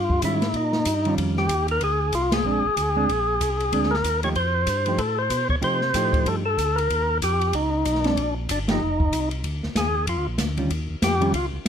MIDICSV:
0, 0, Header, 1, 5, 480
1, 0, Start_track
1, 0, Tempo, 317628
1, 813, Time_signature, 4, 2, 24, 8
1, 17651, End_track
2, 0, Start_track
2, 0, Title_t, "Tonewheel organ"
2, 0, Program_c, 0, 16
2, 0, Note_on_c, 0, 65, 73
2, 326, Note_off_c, 0, 65, 0
2, 374, Note_on_c, 0, 64, 79
2, 847, Note_off_c, 0, 64, 0
2, 852, Note_on_c, 0, 63, 91
2, 1732, Note_off_c, 0, 63, 0
2, 2087, Note_on_c, 0, 67, 79
2, 2523, Note_off_c, 0, 67, 0
2, 2589, Note_on_c, 0, 70, 94
2, 2761, Note_off_c, 0, 70, 0
2, 2775, Note_on_c, 0, 68, 97
2, 3243, Note_on_c, 0, 65, 94
2, 3249, Note_off_c, 0, 68, 0
2, 3524, Note_on_c, 0, 68, 99
2, 3529, Note_off_c, 0, 65, 0
2, 5906, Note_on_c, 0, 70, 101
2, 5992, Note_off_c, 0, 68, 0
2, 6356, Note_off_c, 0, 70, 0
2, 6406, Note_on_c, 0, 73, 89
2, 6488, Note_off_c, 0, 73, 0
2, 6589, Note_on_c, 0, 72, 95
2, 7532, Note_on_c, 0, 69, 82
2, 7576, Note_off_c, 0, 72, 0
2, 7833, Note_on_c, 0, 72, 94
2, 7838, Note_off_c, 0, 69, 0
2, 8281, Note_off_c, 0, 72, 0
2, 8311, Note_on_c, 0, 73, 94
2, 8397, Note_off_c, 0, 73, 0
2, 8522, Note_on_c, 0, 72, 103
2, 9481, Note_on_c, 0, 69, 81
2, 9503, Note_off_c, 0, 72, 0
2, 9609, Note_off_c, 0, 69, 0
2, 9754, Note_on_c, 0, 69, 108
2, 10211, Note_on_c, 0, 70, 99
2, 10250, Note_off_c, 0, 69, 0
2, 10846, Note_off_c, 0, 70, 0
2, 10933, Note_on_c, 0, 67, 96
2, 11408, Note_on_c, 0, 63, 83
2, 11414, Note_off_c, 0, 67, 0
2, 12166, Note_on_c, 0, 62, 88
2, 12191, Note_off_c, 0, 63, 0
2, 12608, Note_off_c, 0, 62, 0
2, 12859, Note_on_c, 0, 62, 90
2, 12983, Note_off_c, 0, 62, 0
2, 13167, Note_on_c, 0, 63, 73
2, 14040, Note_off_c, 0, 63, 0
2, 14768, Note_on_c, 0, 68, 87
2, 15202, Note_off_c, 0, 68, 0
2, 15246, Note_on_c, 0, 65, 65
2, 15516, Note_off_c, 0, 65, 0
2, 16681, Note_on_c, 0, 67, 103
2, 17116, Note_off_c, 0, 67, 0
2, 17156, Note_on_c, 0, 65, 67
2, 17325, Note_off_c, 0, 65, 0
2, 17651, End_track
3, 0, Start_track
3, 0, Title_t, "Hollow-body jazz guitar"
3, 0, Program_c, 1, 26
3, 345, Note_on_c, 1, 51, 52
3, 354, Note_on_c, 1, 55, 51
3, 358, Note_on_c, 1, 61, 50
3, 374, Note_on_c, 1, 65, 66
3, 601, Note_off_c, 1, 51, 0
3, 606, Note_off_c, 1, 55, 0
3, 608, Note_off_c, 1, 61, 0
3, 616, Note_off_c, 1, 65, 0
3, 1604, Note_on_c, 1, 51, 61
3, 1605, Note_on_c, 1, 55, 67
3, 1616, Note_on_c, 1, 61, 62
3, 1625, Note_on_c, 1, 65, 65
3, 2225, Note_off_c, 1, 51, 0
3, 2226, Note_off_c, 1, 55, 0
3, 2232, Note_off_c, 1, 61, 0
3, 2236, Note_off_c, 1, 65, 0
3, 3704, Note_on_c, 1, 56, 50
3, 3714, Note_on_c, 1, 60, 50
3, 3726, Note_on_c, 1, 62, 57
3, 3962, Note_off_c, 1, 56, 0
3, 3967, Note_off_c, 1, 60, 0
3, 3973, Note_off_c, 1, 62, 0
3, 4474, Note_on_c, 1, 56, 62
3, 4483, Note_on_c, 1, 60, 62
3, 4484, Note_on_c, 1, 62, 65
3, 4641, Note_off_c, 1, 56, 0
3, 4646, Note_off_c, 1, 60, 0
3, 4646, Note_off_c, 1, 62, 0
3, 5627, Note_on_c, 1, 56, 51
3, 5636, Note_on_c, 1, 60, 58
3, 5648, Note_on_c, 1, 62, 65
3, 5886, Note_off_c, 1, 56, 0
3, 5890, Note_off_c, 1, 60, 0
3, 5896, Note_off_c, 1, 62, 0
3, 6396, Note_on_c, 1, 53, 51
3, 6400, Note_on_c, 1, 57, 62
3, 6413, Note_on_c, 1, 63, 65
3, 6414, Note_on_c, 1, 67, 67
3, 6564, Note_off_c, 1, 53, 0
3, 6566, Note_off_c, 1, 57, 0
3, 6573, Note_off_c, 1, 63, 0
3, 6573, Note_off_c, 1, 67, 0
3, 7359, Note_on_c, 1, 53, 58
3, 7368, Note_on_c, 1, 57, 53
3, 7376, Note_on_c, 1, 63, 56
3, 7380, Note_on_c, 1, 67, 55
3, 7527, Note_off_c, 1, 53, 0
3, 7531, Note_off_c, 1, 57, 0
3, 7535, Note_off_c, 1, 63, 0
3, 7537, Note_off_c, 1, 67, 0
3, 8482, Note_on_c, 1, 53, 53
3, 8490, Note_on_c, 1, 57, 45
3, 8492, Note_on_c, 1, 67, 56
3, 8497, Note_on_c, 1, 63, 59
3, 8755, Note_off_c, 1, 53, 0
3, 8760, Note_off_c, 1, 57, 0
3, 8761, Note_off_c, 1, 67, 0
3, 8763, Note_off_c, 1, 63, 0
3, 8977, Note_on_c, 1, 53, 60
3, 8983, Note_on_c, 1, 57, 66
3, 8994, Note_on_c, 1, 67, 75
3, 8996, Note_on_c, 1, 63, 72
3, 9695, Note_off_c, 1, 53, 0
3, 9698, Note_off_c, 1, 57, 0
3, 9703, Note_off_c, 1, 67, 0
3, 9704, Note_off_c, 1, 63, 0
3, 12152, Note_on_c, 1, 56, 53
3, 12158, Note_on_c, 1, 60, 62
3, 12176, Note_on_c, 1, 62, 59
3, 12325, Note_off_c, 1, 56, 0
3, 12328, Note_off_c, 1, 60, 0
3, 12337, Note_off_c, 1, 62, 0
3, 13113, Note_on_c, 1, 53, 65
3, 13120, Note_on_c, 1, 57, 67
3, 13133, Note_on_c, 1, 63, 66
3, 13136, Note_on_c, 1, 67, 72
3, 13285, Note_off_c, 1, 53, 0
3, 13288, Note_off_c, 1, 57, 0
3, 13295, Note_off_c, 1, 63, 0
3, 13296, Note_off_c, 1, 67, 0
3, 15978, Note_on_c, 1, 51, 54
3, 15989, Note_on_c, 1, 55, 54
3, 15990, Note_on_c, 1, 61, 62
3, 16001, Note_on_c, 1, 65, 53
3, 16155, Note_off_c, 1, 51, 0
3, 16160, Note_off_c, 1, 55, 0
3, 16161, Note_off_c, 1, 61, 0
3, 16166, Note_off_c, 1, 65, 0
3, 16928, Note_on_c, 1, 51, 78
3, 16943, Note_on_c, 1, 55, 77
3, 16944, Note_on_c, 1, 61, 75
3, 16954, Note_on_c, 1, 65, 72
3, 17108, Note_off_c, 1, 51, 0
3, 17116, Note_off_c, 1, 55, 0
3, 17116, Note_off_c, 1, 61, 0
3, 17121, Note_off_c, 1, 65, 0
3, 17651, End_track
4, 0, Start_track
4, 0, Title_t, "Tonewheel organ"
4, 0, Program_c, 2, 16
4, 0, Note_on_c, 2, 43, 86
4, 322, Note_off_c, 2, 43, 0
4, 333, Note_on_c, 2, 44, 81
4, 799, Note_off_c, 2, 44, 0
4, 815, Note_on_c, 2, 46, 80
4, 1280, Note_off_c, 2, 46, 0
4, 1289, Note_on_c, 2, 43, 83
4, 1757, Note_off_c, 2, 43, 0
4, 1774, Note_on_c, 2, 41, 77
4, 2239, Note_off_c, 2, 41, 0
4, 2252, Note_on_c, 2, 39, 75
4, 2719, Note_off_c, 2, 39, 0
4, 2736, Note_on_c, 2, 38, 84
4, 3201, Note_off_c, 2, 38, 0
4, 3210, Note_on_c, 2, 36, 87
4, 3679, Note_off_c, 2, 36, 0
4, 3683, Note_on_c, 2, 34, 78
4, 3960, Note_off_c, 2, 34, 0
4, 3989, Note_on_c, 2, 34, 34
4, 4083, Note_off_c, 2, 34, 0
4, 4177, Note_on_c, 2, 38, 78
4, 4643, Note_off_c, 2, 38, 0
4, 4664, Note_on_c, 2, 34, 76
4, 5127, Note_off_c, 2, 34, 0
4, 5149, Note_on_c, 2, 36, 91
4, 5610, Note_off_c, 2, 36, 0
4, 5628, Note_on_c, 2, 38, 75
4, 6090, Note_off_c, 2, 38, 0
4, 6098, Note_on_c, 2, 39, 75
4, 6566, Note_off_c, 2, 39, 0
4, 6577, Note_on_c, 2, 41, 77
4, 7046, Note_off_c, 2, 41, 0
4, 7051, Note_on_c, 2, 43, 87
4, 7523, Note_off_c, 2, 43, 0
4, 7533, Note_on_c, 2, 45, 85
4, 8004, Note_off_c, 2, 45, 0
4, 8017, Note_on_c, 2, 47, 82
4, 8287, Note_off_c, 2, 47, 0
4, 8305, Note_on_c, 2, 47, 39
4, 8402, Note_off_c, 2, 47, 0
4, 8486, Note_on_c, 2, 48, 73
4, 8962, Note_off_c, 2, 48, 0
4, 8972, Note_on_c, 2, 45, 86
4, 9445, Note_off_c, 2, 45, 0
4, 9449, Note_on_c, 2, 43, 76
4, 9923, Note_off_c, 2, 43, 0
4, 9942, Note_on_c, 2, 38, 85
4, 10410, Note_off_c, 2, 38, 0
4, 10421, Note_on_c, 2, 39, 75
4, 10889, Note_off_c, 2, 39, 0
4, 10910, Note_on_c, 2, 41, 92
4, 11374, Note_off_c, 2, 41, 0
4, 11389, Note_on_c, 2, 37, 80
4, 11853, Note_off_c, 2, 37, 0
4, 11868, Note_on_c, 2, 35, 94
4, 12333, Note_off_c, 2, 35, 0
4, 12348, Note_on_c, 2, 34, 76
4, 12813, Note_off_c, 2, 34, 0
4, 12831, Note_on_c, 2, 31, 91
4, 13294, Note_off_c, 2, 31, 0
4, 13321, Note_on_c, 2, 29, 77
4, 13778, Note_off_c, 2, 29, 0
4, 13786, Note_on_c, 2, 36, 83
4, 14251, Note_off_c, 2, 36, 0
4, 14265, Note_on_c, 2, 38, 75
4, 14535, Note_off_c, 2, 38, 0
4, 14558, Note_on_c, 2, 38, 43
4, 14652, Note_off_c, 2, 38, 0
4, 14738, Note_on_c, 2, 39, 81
4, 15206, Note_off_c, 2, 39, 0
4, 15215, Note_on_c, 2, 41, 77
4, 15370, Note_on_c, 2, 38, 52
4, 15373, Note_off_c, 2, 41, 0
4, 15534, Note_on_c, 2, 34, 60
4, 15536, Note_off_c, 2, 38, 0
4, 15686, Note_off_c, 2, 34, 0
4, 15691, Note_on_c, 2, 38, 85
4, 16161, Note_off_c, 2, 38, 0
4, 16172, Note_on_c, 2, 39, 81
4, 16446, Note_off_c, 2, 39, 0
4, 16470, Note_on_c, 2, 39, 40
4, 16564, Note_off_c, 2, 39, 0
4, 16654, Note_on_c, 2, 41, 93
4, 17121, Note_off_c, 2, 41, 0
4, 17137, Note_on_c, 2, 37, 82
4, 17404, Note_off_c, 2, 37, 0
4, 17422, Note_on_c, 2, 37, 36
4, 17518, Note_off_c, 2, 37, 0
4, 17651, End_track
5, 0, Start_track
5, 0, Title_t, "Drums"
5, 147, Note_on_c, 9, 36, 52
5, 298, Note_off_c, 9, 36, 0
5, 332, Note_on_c, 9, 44, 65
5, 332, Note_on_c, 9, 51, 62
5, 335, Note_on_c, 9, 36, 20
5, 484, Note_off_c, 9, 44, 0
5, 484, Note_off_c, 9, 51, 0
5, 486, Note_off_c, 9, 36, 0
5, 630, Note_on_c, 9, 38, 56
5, 633, Note_on_c, 9, 51, 45
5, 781, Note_off_c, 9, 38, 0
5, 784, Note_off_c, 9, 51, 0
5, 812, Note_on_c, 9, 36, 18
5, 813, Note_on_c, 9, 51, 50
5, 964, Note_off_c, 9, 36, 0
5, 964, Note_off_c, 9, 51, 0
5, 1098, Note_on_c, 9, 38, 45
5, 1250, Note_off_c, 9, 38, 0
5, 1289, Note_on_c, 9, 44, 70
5, 1289, Note_on_c, 9, 51, 70
5, 1291, Note_on_c, 9, 36, 18
5, 1440, Note_off_c, 9, 44, 0
5, 1440, Note_off_c, 9, 51, 0
5, 1442, Note_off_c, 9, 36, 0
5, 1588, Note_on_c, 9, 51, 38
5, 1739, Note_off_c, 9, 51, 0
5, 1775, Note_on_c, 9, 36, 23
5, 1782, Note_on_c, 9, 51, 64
5, 1926, Note_off_c, 9, 36, 0
5, 1933, Note_off_c, 9, 51, 0
5, 2066, Note_on_c, 9, 38, 30
5, 2218, Note_off_c, 9, 38, 0
5, 2254, Note_on_c, 9, 36, 18
5, 2254, Note_on_c, 9, 44, 47
5, 2254, Note_on_c, 9, 51, 67
5, 2405, Note_off_c, 9, 36, 0
5, 2406, Note_off_c, 9, 44, 0
5, 2406, Note_off_c, 9, 51, 0
5, 2540, Note_on_c, 9, 51, 44
5, 2692, Note_off_c, 9, 51, 0
5, 2731, Note_on_c, 9, 51, 55
5, 2732, Note_on_c, 9, 36, 23
5, 2882, Note_off_c, 9, 51, 0
5, 2883, Note_off_c, 9, 36, 0
5, 3211, Note_on_c, 9, 44, 52
5, 3211, Note_on_c, 9, 51, 68
5, 3213, Note_on_c, 9, 36, 21
5, 3362, Note_off_c, 9, 44, 0
5, 3362, Note_off_c, 9, 51, 0
5, 3364, Note_off_c, 9, 36, 0
5, 3503, Note_on_c, 9, 38, 80
5, 3506, Note_on_c, 9, 51, 63
5, 3654, Note_off_c, 9, 38, 0
5, 3657, Note_off_c, 9, 51, 0
5, 4180, Note_on_c, 9, 36, 21
5, 4185, Note_on_c, 9, 44, 52
5, 4185, Note_on_c, 9, 51, 64
5, 4331, Note_off_c, 9, 36, 0
5, 4336, Note_off_c, 9, 44, 0
5, 4336, Note_off_c, 9, 51, 0
5, 4664, Note_on_c, 9, 36, 25
5, 4674, Note_on_c, 9, 51, 54
5, 4815, Note_off_c, 9, 36, 0
5, 4825, Note_off_c, 9, 51, 0
5, 5145, Note_on_c, 9, 36, 26
5, 5150, Note_on_c, 9, 44, 65
5, 5150, Note_on_c, 9, 51, 69
5, 5296, Note_off_c, 9, 36, 0
5, 5301, Note_off_c, 9, 44, 0
5, 5301, Note_off_c, 9, 51, 0
5, 5445, Note_on_c, 9, 51, 43
5, 5597, Note_off_c, 9, 51, 0
5, 5625, Note_on_c, 9, 36, 25
5, 5630, Note_on_c, 9, 51, 60
5, 5776, Note_off_c, 9, 36, 0
5, 5781, Note_off_c, 9, 51, 0
5, 5792, Note_on_c, 9, 38, 30
5, 5943, Note_off_c, 9, 38, 0
5, 5951, Note_on_c, 9, 38, 42
5, 6101, Note_on_c, 9, 36, 20
5, 6102, Note_off_c, 9, 38, 0
5, 6110, Note_on_c, 9, 44, 60
5, 6110, Note_on_c, 9, 51, 66
5, 6253, Note_off_c, 9, 36, 0
5, 6261, Note_off_c, 9, 44, 0
5, 6261, Note_off_c, 9, 51, 0
5, 6391, Note_on_c, 9, 51, 44
5, 6542, Note_off_c, 9, 51, 0
5, 6577, Note_on_c, 9, 36, 21
5, 6579, Note_on_c, 9, 51, 50
5, 6728, Note_off_c, 9, 36, 0
5, 6730, Note_off_c, 9, 51, 0
5, 7052, Note_on_c, 9, 36, 24
5, 7052, Note_on_c, 9, 44, 58
5, 7052, Note_on_c, 9, 51, 66
5, 7203, Note_off_c, 9, 36, 0
5, 7204, Note_off_c, 9, 44, 0
5, 7204, Note_off_c, 9, 51, 0
5, 7339, Note_on_c, 9, 51, 45
5, 7490, Note_off_c, 9, 51, 0
5, 7531, Note_on_c, 9, 36, 26
5, 7531, Note_on_c, 9, 51, 58
5, 7682, Note_off_c, 9, 36, 0
5, 7682, Note_off_c, 9, 51, 0
5, 8012, Note_on_c, 9, 36, 21
5, 8012, Note_on_c, 9, 44, 58
5, 8012, Note_on_c, 9, 51, 68
5, 8163, Note_off_c, 9, 36, 0
5, 8163, Note_off_c, 9, 44, 0
5, 8163, Note_off_c, 9, 51, 0
5, 8302, Note_on_c, 9, 36, 43
5, 8454, Note_off_c, 9, 36, 0
5, 8492, Note_on_c, 9, 36, 18
5, 8498, Note_on_c, 9, 51, 52
5, 8643, Note_off_c, 9, 36, 0
5, 8650, Note_off_c, 9, 51, 0
5, 8785, Note_on_c, 9, 38, 33
5, 8936, Note_off_c, 9, 38, 0
5, 8974, Note_on_c, 9, 36, 27
5, 8976, Note_on_c, 9, 44, 67
5, 8976, Note_on_c, 9, 51, 70
5, 9125, Note_off_c, 9, 36, 0
5, 9127, Note_off_c, 9, 44, 0
5, 9127, Note_off_c, 9, 51, 0
5, 9264, Note_on_c, 9, 36, 62
5, 9276, Note_on_c, 9, 51, 42
5, 9415, Note_off_c, 9, 36, 0
5, 9427, Note_off_c, 9, 51, 0
5, 9456, Note_on_c, 9, 36, 26
5, 9461, Note_on_c, 9, 51, 69
5, 9607, Note_off_c, 9, 36, 0
5, 9612, Note_off_c, 9, 51, 0
5, 9941, Note_on_c, 9, 36, 23
5, 9951, Note_on_c, 9, 44, 62
5, 9951, Note_on_c, 9, 51, 63
5, 10092, Note_off_c, 9, 36, 0
5, 10102, Note_off_c, 9, 44, 0
5, 10102, Note_off_c, 9, 51, 0
5, 10250, Note_on_c, 9, 51, 49
5, 10401, Note_off_c, 9, 51, 0
5, 10422, Note_on_c, 9, 36, 19
5, 10431, Note_on_c, 9, 51, 59
5, 10573, Note_off_c, 9, 36, 0
5, 10582, Note_off_c, 9, 51, 0
5, 10904, Note_on_c, 9, 36, 19
5, 10910, Note_on_c, 9, 44, 53
5, 10910, Note_on_c, 9, 51, 75
5, 11055, Note_off_c, 9, 36, 0
5, 11061, Note_off_c, 9, 44, 0
5, 11061, Note_off_c, 9, 51, 0
5, 11203, Note_on_c, 9, 51, 44
5, 11354, Note_off_c, 9, 51, 0
5, 11382, Note_on_c, 9, 36, 20
5, 11382, Note_on_c, 9, 51, 61
5, 11533, Note_off_c, 9, 36, 0
5, 11533, Note_off_c, 9, 51, 0
5, 11865, Note_on_c, 9, 36, 17
5, 11868, Note_on_c, 9, 44, 62
5, 11868, Note_on_c, 9, 51, 62
5, 12016, Note_off_c, 9, 36, 0
5, 12016, Note_on_c, 9, 38, 27
5, 12019, Note_off_c, 9, 44, 0
5, 12019, Note_off_c, 9, 51, 0
5, 12152, Note_on_c, 9, 51, 45
5, 12167, Note_off_c, 9, 38, 0
5, 12180, Note_on_c, 9, 38, 44
5, 12304, Note_off_c, 9, 51, 0
5, 12331, Note_off_c, 9, 38, 0
5, 12348, Note_on_c, 9, 36, 17
5, 12350, Note_on_c, 9, 51, 55
5, 12499, Note_off_c, 9, 36, 0
5, 12501, Note_off_c, 9, 51, 0
5, 12829, Note_on_c, 9, 36, 22
5, 12830, Note_on_c, 9, 44, 60
5, 12830, Note_on_c, 9, 51, 77
5, 12980, Note_off_c, 9, 36, 0
5, 12981, Note_off_c, 9, 44, 0
5, 12981, Note_off_c, 9, 51, 0
5, 13121, Note_on_c, 9, 38, 71
5, 13124, Note_on_c, 9, 51, 55
5, 13272, Note_off_c, 9, 38, 0
5, 13275, Note_off_c, 9, 51, 0
5, 13601, Note_on_c, 9, 36, 54
5, 13752, Note_off_c, 9, 36, 0
5, 13792, Note_on_c, 9, 44, 58
5, 13792, Note_on_c, 9, 51, 68
5, 13943, Note_off_c, 9, 44, 0
5, 13943, Note_off_c, 9, 51, 0
5, 14070, Note_on_c, 9, 51, 44
5, 14221, Note_off_c, 9, 51, 0
5, 14263, Note_on_c, 9, 36, 18
5, 14264, Note_on_c, 9, 51, 53
5, 14414, Note_off_c, 9, 36, 0
5, 14415, Note_off_c, 9, 51, 0
5, 14558, Note_on_c, 9, 38, 33
5, 14709, Note_off_c, 9, 38, 0
5, 14740, Note_on_c, 9, 36, 27
5, 14742, Note_on_c, 9, 38, 72
5, 14745, Note_on_c, 9, 44, 59
5, 14745, Note_on_c, 9, 51, 67
5, 14892, Note_off_c, 9, 36, 0
5, 14893, Note_off_c, 9, 38, 0
5, 14896, Note_off_c, 9, 44, 0
5, 14896, Note_off_c, 9, 51, 0
5, 15218, Note_on_c, 9, 36, 25
5, 15220, Note_on_c, 9, 51, 68
5, 15369, Note_off_c, 9, 36, 0
5, 15371, Note_off_c, 9, 51, 0
5, 15688, Note_on_c, 9, 38, 68
5, 15691, Note_on_c, 9, 44, 59
5, 15691, Note_on_c, 9, 51, 68
5, 15692, Note_on_c, 9, 36, 23
5, 15839, Note_off_c, 9, 38, 0
5, 15842, Note_off_c, 9, 44, 0
5, 15842, Note_off_c, 9, 51, 0
5, 15844, Note_off_c, 9, 36, 0
5, 15979, Note_on_c, 9, 51, 43
5, 16130, Note_off_c, 9, 51, 0
5, 16173, Note_on_c, 9, 36, 17
5, 16176, Note_on_c, 9, 51, 55
5, 16324, Note_off_c, 9, 36, 0
5, 16327, Note_off_c, 9, 51, 0
5, 16654, Note_on_c, 9, 36, 25
5, 16655, Note_on_c, 9, 38, 74
5, 16658, Note_on_c, 9, 44, 54
5, 16658, Note_on_c, 9, 51, 82
5, 16805, Note_off_c, 9, 36, 0
5, 16806, Note_off_c, 9, 38, 0
5, 16809, Note_off_c, 9, 44, 0
5, 16809, Note_off_c, 9, 51, 0
5, 16948, Note_on_c, 9, 51, 41
5, 17099, Note_off_c, 9, 51, 0
5, 17131, Note_on_c, 9, 36, 21
5, 17133, Note_on_c, 9, 51, 64
5, 17283, Note_off_c, 9, 36, 0
5, 17285, Note_off_c, 9, 51, 0
5, 17651, End_track
0, 0, End_of_file